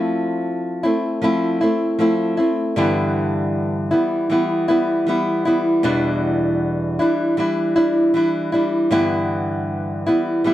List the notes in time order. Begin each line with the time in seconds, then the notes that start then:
Already playing: F3 A3 C4 E4
0.83 A3 C4 E4
1.22 F3 A3 C4 E4
1.61 A3 C4 E4
1.99 F3 A3 C4 E4
2.37 A3 C4 E4
2.76 G2 D3 E3 G3 B3 E4
3.91 E3 G3 B3 E4
4.30 E3 G3 B3 E4
4.68 E3 G3 B3 E4
5.07 E3 G3 B3 E4
5.45 E3 G3 B3 E4
5.83 E2 B2 E3 G3 D4 E4
6.99 E3 G3 D4 E4
7.37 E3 G3 D4 E4
7.76 E3 G3 D4 E4
8.14 E3 G3 D4 E4
8.52 E3 G3 D4 E4
8.91 G2 D3 E3 G3 B3 E4
10.06 E3 G3 B3 E4
10.44 E3 G3 B3 E4